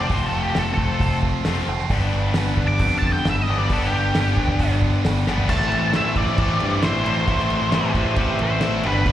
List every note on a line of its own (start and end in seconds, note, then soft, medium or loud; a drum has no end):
0.00 1.45 F2 medium
0.00 1.45 C3 medium
0.00 1.46 F3 medium
0.00 1.46 A3 medium
0.00 1.46 C4 medium
0.00 1.46 F4 medium
0.00 0.14 D5 medium
0.09 0.27 F1 loud
0.09 1.20 F3 medium
0.09 kick loud
0.09 open hi-hat medium
0.14 0.26 C5 medium
0.26 0.41 A4 medium
0.32 0.49 F1 medium
0.32 1.42 A3 medium
0.43 0.57 G4 medium
0.55 0.73 F1 medium
0.55 0.98 C4 medium
0.55 0.72 A4 medium
0.55 snare loud
0.55 open hi-hat medium
0.73 1.16 A4 medium
0.77 0.94 F1 medium
0.77 1.91 F4 medium
0.77 kick medium
1.00 1.33 F1 loud
1.00 1.65 C4 medium
1.00 kick loud
1.00 open hi-hat medium
1.22 1.91 F3 medium
1.22 kick medium
1.43 1.63 F1 medium
1.43 1.68 F2 medium
1.43 1.68 C3 medium
1.43 1.90 A3 medium
1.43 snare loud
1.43 open hi-hat medium
1.48 1.68 F3 medium
1.48 1.69 A3 medium
1.48 1.69 C4 medium
1.48 1.69 F4 loud
1.66 1.85 F1 medium
1.66 1.90 C4 medium
1.79 snare soft
1.90 2.07 G1 loud
1.90 3.47 G2 medium
1.90 3.47 D3 medium
1.90 3.48 G3 medium
1.90 3.47 B3 loud
1.90 3.47 D4 medium
1.90 3.46 G4 medium
1.90 kick loud
1.90 open hi-hat medium
2.12 2.30 G1 medium
2.12 3.25 G3 medium
2.34 2.53 G1 medium
2.34 2.79 B3 medium
2.34 snare loud
2.34 open hi-hat medium
2.57 2.74 G1 medium
2.57 3.70 D4 medium
2.57 kick medium
2.68 2.96 D6 medium
2.79 2.97 F2 medium
2.79 3.47 B3 medium
2.79 kick loud
2.79 open hi-hat medium
2.99 3.19 F2 loud
2.99 3.12 A5 medium
3.03 4.16 D3 medium
3.03 kick medium
3.13 3.27 G5 medium
3.25 3.43 G1 medium
3.25 3.93 G3 medium
3.25 snare loud
3.25 open hi-hat medium
3.30 3.42 E5 medium
3.42 3.56 D#5 medium
3.47 3.66 G1 medium
3.47 3.69 G2 medium
3.47 3.69 D3 medium
3.47 3.70 G3 medium
3.47 3.70 B3 medium
3.47 3.69 D4 medium
3.47 3.69 G4 medium
3.59 3.72 D5 medium
3.69 3.86 G1 loud
3.69 5.26 G2 medium
3.69 5.26 D3 medium
3.69 5.26 G3 medium
3.69 5.27 B3 medium
3.69 5.27 D4 medium
3.69 5.26 G4 medium
3.69 3.87 A4 medium
3.69 kick loud
3.69 open hi-hat medium
3.87 4.73 G4 loud
3.93 4.09 G1 medium
3.93 5.03 G3 medium
4.15 4.32 G1 medium
4.15 4.57 B3 medium
4.15 snare loud
4.15 open hi-hat medium
4.37 4.54 G1 medium
4.37 5.49 D4 medium
4.37 kick medium
4.48 kick medium
4.58 4.92 G1 loud
4.58 5.26 B3 medium
4.58 kick loud
4.58 open hi-hat medium
4.81 5.49 D3 medium
4.81 kick medium
5.04 5.22 G1 medium
5.04 5.49 G3 medium
5.04 snare loud
5.04 open hi-hat medium
5.27 5.44 G1 loud
5.27 5.50 G2 medium
5.27 5.49 D3 medium
5.27 5.49 G3 medium
5.27 5.49 B3 medium
5.27 5.49 D4 medium
5.27 5.48 G4 medium
5.27 snare medium
5.38 floor tom medium
5.49 5.70 A1 medium
5.49 5.95 A2 medium
5.49 5.95 E3 medium
5.49 5.94 A3 medium
5.49 5.95 C4 medium
5.49 5.96 E4 medium
5.49 5.96 A4 medium
5.49 5.91 A5 loud
5.49 kick loud
5.49 crash loud
5.49 crash medium
5.61 snare soft
5.72 5.93 A1 medium
5.72 crash medium
5.93 6.15 A1 medium
5.93 6.15 A2 medium
5.93 6.16 E3 medium
5.93 6.16 A3 medium
5.93 6.16 C4 medium
5.93 6.16 E4 loud
5.93 6.17 A4 medium
5.93 6.17 E5 medium
5.93 snare loud
5.93 crash medium
6.16 6.37 A1 medium
6.16 6.38 A2 medium
6.16 6.39 E3 medium
6.16 6.39 A3 medium
6.16 6.40 C4 medium
6.16 6.40 E4 medium
6.16 6.40 A4 medium
6.16 6.86 D5 medium
6.16 kick medium
6.16 crash medium
6.27 snare soft
6.38 6.59 A1 loud
6.38 6.82 A2 medium
6.38 6.81 E3 loud
6.38 6.83 A3 medium
6.38 6.82 C4 medium
6.38 6.82 E4 loud
6.38 6.83 A4 loud
6.38 kick loud
6.38 crash medium
6.60 6.82 G2 medium
6.60 crash medium
6.82 7.04 A1 medium
6.82 7.03 A2 medium
6.82 7.04 E3 medium
6.82 7.05 A3 medium
6.82 7.05 C4 medium
6.82 7.05 E4 medium
6.82 7.05 A4 medium
6.82 7.03 C5 medium
6.82 snare loud
6.82 crash medium
7.04 7.27 A1 medium
7.04 7.25 A2 medium
7.04 7.26 E3 medium
7.04 7.27 A3 medium
7.04 7.26 C4 medium
7.04 7.26 E4 medium
7.04 7.27 A4 loud
7.04 7.90 C5 medium
7.04 crash medium
7.26 7.48 A1 loud
7.26 7.71 A2 medium
7.26 7.71 E3 medium
7.26 7.72 A3 loud
7.26 7.72 C4 medium
7.26 7.73 E4 medium
7.26 7.73 A4 loud
7.26 kick loud
7.26 crash medium
7.39 snare soft
7.50 7.72 A1 medium
7.50 crash medium
7.72 7.94 A1 medium
7.72 7.92 A2 medium
7.72 7.93 E3 medium
7.72 7.94 A3 medium
7.72 7.93 C4 loud
7.72 7.94 E4 loud
7.72 7.95 G4 medium
7.72 7.94 A4 medium
7.72 7.95 C5 medium
7.72 snare loud
7.72 crash medium
7.93 8.15 A1 medium
7.93 8.15 A2 medium
7.93 8.15 E3 medium
7.93 8.16 A3 medium
7.93 8.16 C4 medium
7.93 8.16 E4 medium
7.93 8.16 G4 medium
7.93 8.17 A4 loud
7.93 8.17 C5 medium
7.93 kick medium
7.93 crash medium
8.16 8.37 A1 medium
8.16 8.60 A2 loud
8.16 8.60 E3 loud
8.16 8.61 A3 medium
8.16 8.61 C4 medium
8.16 8.61 E4 loud
8.16 8.39 G4 medium
8.16 8.62 A4 loud
8.16 8.40 C5 medium
8.16 kick loud
8.16 crash medium
8.39 8.61 A1 medium
8.39 8.73 C5 medium
8.39 crash medium
8.61 8.83 A1 medium
8.61 8.82 A2 medium
8.61 8.83 E3 medium
8.61 8.83 A3 medium
8.61 8.83 C4 loud
8.61 8.83 E4 medium
8.61 8.83 A4 medium
8.61 snare loud
8.61 crash medium
8.82 9.05 G1 medium
8.82 9.04 G2 medium
8.82 9.04 D3 medium
8.82 9.05 G3 medium
8.82 9.06 B3 medium
8.82 9.06 D4 loud
8.82 9.06 G4 loud
8.82 crash medium
8.86 9.07 G2 medium
8.86 9.12 B4 medium
9.04 9.12 G1 loud
9.04 9.12 G2 medium
9.04 9.12 D3 medium
9.04 9.12 G3 medium
9.04 9.12 B3 medium
9.04 9.12 D4 loud
9.04 9.12 G4 loud
9.04 kick loud
9.04 crash medium